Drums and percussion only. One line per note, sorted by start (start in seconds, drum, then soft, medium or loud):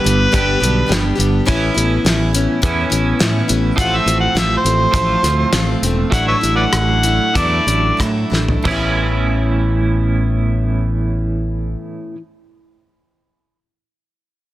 0.06 closed hi-hat medium
0.34 kick loud
0.34 closed hi-hat medium
0.63 closed hi-hat medium
0.92 snare medium
0.92 closed hi-hat medium
1.20 closed hi-hat soft
1.48 kick medium
1.48 closed hi-hat medium
1.78 closed hi-hat medium
2.06 snare loud
2.06 closed hi-hat medium
2.34 closed hi-hat medium
2.63 kick medium
2.63 closed hi-hat medium
2.92 closed hi-hat medium
3.20 snare medium
3.20 closed hi-hat medium
3.49 closed hi-hat medium
3.78 kick medium
3.78 closed hi-hat medium
4.08 closed hi-hat medium
4.37 snare loud
4.37 closed hi-hat medium
4.66 closed hi-hat medium
4.94 kick medium
4.94 closed hi-hat medium
5.24 snare soft
5.24 closed hi-hat medium
5.53 snare medium
5.53 closed hi-hat medium
5.83 closed hi-hat soft
6.12 kick medium
6.12 closed hi-hat medium
6.43 closed hi-hat soft
6.73 cross-stick loud
6.73 closed hi-hat medium
7.03 closed hi-hat soft
7.35 kick medium
7.35 closed hi-hat medium
7.68 closed hi-hat soft
8.00 kick medium
8.00 cross-stick medium
8.00 closed hi-hat medium
8.33 snare soft
8.48 floor tom medium
8.65 kick medium
8.65 floor tom medium
8.65 crash medium